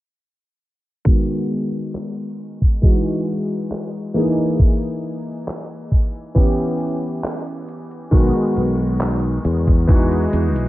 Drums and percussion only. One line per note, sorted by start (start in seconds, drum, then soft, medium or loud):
1.07 kick loud
1.07 closed hi-hat medium
1.51 closed hi-hat medium
1.74 closed hi-hat soft
1.95 clap loud
2.18 closed hi-hat soft
2.39 closed hi-hat medium
2.62 kick medium
2.62 closed hi-hat soft
2.83 kick loud
2.83 closed hi-hat medium
3.06 closed hi-hat soft
3.27 closed hi-hat medium
3.50 closed hi-hat soft
3.71 clap loud
3.71 closed hi-hat medium
3.94 closed hi-hat soft
4.16 closed hi-hat medium
4.38 closed hi-hat soft
4.60 kick loud
4.60 closed hi-hat medium
4.82 closed hi-hat soft
5.04 closed hi-hat medium
5.27 closed hi-hat soft
5.48 clap loud
5.48 closed hi-hat medium
5.71 closed hi-hat soft
5.92 kick medium
5.92 closed hi-hat medium
6.15 closed hi-hat soft
6.36 kick loud
6.36 closed hi-hat medium
6.59 closed hi-hat soft
6.80 closed hi-hat medium
7.03 closed hi-hat soft
7.24 clap loud
7.24 closed hi-hat medium
7.47 closed hi-hat soft
7.68 closed hi-hat medium
7.91 closed hi-hat soft
8.12 kick loud
8.12 closed hi-hat medium
8.35 closed hi-hat soft
8.56 closed hi-hat medium
8.79 closed hi-hat soft
9.01 clap loud
9.01 closed hi-hat medium
9.24 closed hi-hat soft
9.45 closed hi-hat medium
9.68 kick medium
9.68 closed hi-hat soft
9.89 kick loud
9.89 closed hi-hat medium
10.12 closed hi-hat soft
10.33 closed hi-hat medium
10.56 closed hi-hat soft